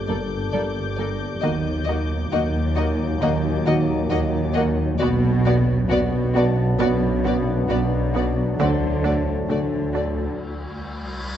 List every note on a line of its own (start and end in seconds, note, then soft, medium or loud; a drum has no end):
0.00 0.43 G1 soft
0.00 1.39 G1 medium
0.00 0.42 G2 soft
0.00 1.39 A#2 soft
0.00 1.39 G3 soft
0.00 1.40 D4 soft
0.00 1.40 A4 soft
0.00 1.47 C6 soft
0.00 4.52 D6 soft
0.00 3.62 G6 soft
0.07 0.36 G2 medium
0.07 0.15 A#3 soft
0.07 0.17 A4 soft
0.07 0.15 D5 soft
0.52 1.32 G1 soft
0.52 1.32 G2 soft
0.52 0.81 G2 soft
0.52 0.61 A#3 soft
0.52 0.61 A4 soft
0.52 0.60 D5 soft
0.97 1.25 G3 soft
0.97 1.07 A#3 soft
0.97 1.06 A4 soft
0.97 1.05 D5 soft
0.97 4.90 A#6 soft
1.41 5.01 D#2 medium
1.41 2.22 D#2 medium
1.41 4.97 A#2 medium
1.41 1.70 D#3 medium
1.41 4.98 F#3 medium
1.41 4.83 A#3 medium
1.41 1.52 A#3 soft
1.41 4.83 D#4 medium
1.41 1.51 F#4 soft
1.41 1.49 D#5 medium
1.84 1.96 F#4 soft
1.84 1.92 D#5 soft
1.88 1.96 A#3 soft
1.88 2.15 D#4 medium
2.32 3.11 D#2 medium
2.32 3.12 D#2 medium
2.32 2.60 D#3 medium
2.32 2.41 A#3 soft
2.32 2.40 F#4 medium
2.32 2.40 D#5 medium
2.76 2.86 A#3 medium
2.76 3.05 D#4 medium
2.76 2.84 F#4 soft
2.76 2.84 D#5 medium
3.21 4.01 D#2 medium
3.21 3.49 D#3 medium
3.21 3.30 A#3 medium
3.21 3.29 F#4 medium
3.21 3.30 D#5 medium
3.66 3.94 D#3 medium
3.66 3.75 A#3 medium
3.66 3.74 F#4 medium
3.66 3.74 D#5 medium
4.10 4.90 D#2 medium
4.10 4.39 D#3 medium
4.10 4.19 A#3 medium
4.10 4.18 F#4 medium
4.10 4.18 D#5 medium
4.54 4.64 A#3 medium
4.54 4.62 F#4 medium
4.54 4.62 D#5 medium
4.58 4.84 D#4 medium
4.99 8.58 B1 medium
4.99 5.80 B1 medium
4.99 8.43 F#2 medium
4.99 5.80 B2 medium
4.99 5.29 B2 medium
4.99 10.35 F#3 medium
4.99 8.55 B3 medium
4.99 5.09 B3 medium
4.99 10.34 D4 medium
4.99 5.07 F#4 medium
4.99 5.07 D5 medium
5.45 5.54 B3 medium
5.45 5.73 B3 medium
5.45 5.53 F#4 medium
5.45 5.53 D5 medium
5.89 6.70 B1 medium
5.89 6.69 B2 medium
5.89 6.18 B2 medium
5.89 5.99 B3 medium
5.89 5.97 F#4 medium
5.89 5.99 D5 medium
6.33 6.43 B3 medium
6.33 6.63 B3 medium
6.33 6.41 F#4 medium
6.33 6.43 D5 medium
6.33 10.26 A5 medium
6.78 7.59 B1 medium
6.78 7.07 B2 loud
6.78 7.59 B2 medium
6.78 6.86 B3 medium
6.78 6.88 F#4 medium
6.78 6.87 D5 medium
7.24 7.52 B2 medium
7.24 7.32 B3 medium
7.24 7.32 F#4 medium
7.24 7.35 D5 medium
7.68 8.48 B1 medium
7.68 8.49 B2 medium
7.68 7.97 B2 medium
7.68 7.78 B3 medium
7.68 7.76 F#4 medium
7.68 7.78 D5 medium
8.14 8.22 B3 medium
8.14 8.42 B3 medium
8.14 8.22 F#4 medium
8.14 8.24 D5 soft
8.58 10.38 D2 medium
8.58 9.38 D2 medium
8.58 10.35 A2 medium
8.58 9.38 D3 medium
8.58 8.86 D3 medium
8.58 10.34 A3 medium
8.58 8.67 A3 medium
8.58 8.67 F#4 medium
8.58 11.37 C5 soft
8.58 8.68 D5 medium
8.58 11.37 C6 soft
8.58 cymbal swell medium
9.04 9.12 A3 soft
9.04 9.31 D4 medium
9.04 9.12 F#4 soft
9.04 9.13 D5 soft
9.48 10.28 D2 medium
9.48 10.28 D3 soft
9.48 9.76 D3 medium
9.48 9.57 A3 soft
9.48 9.57 F#4 soft
9.48 9.59 D5 soft
9.93 10.02 A3 soft
9.93 10.21 D4 medium
9.93 10.01 F#4 soft
9.93 10.04 D5 soft
10.37 11.37 C2 medium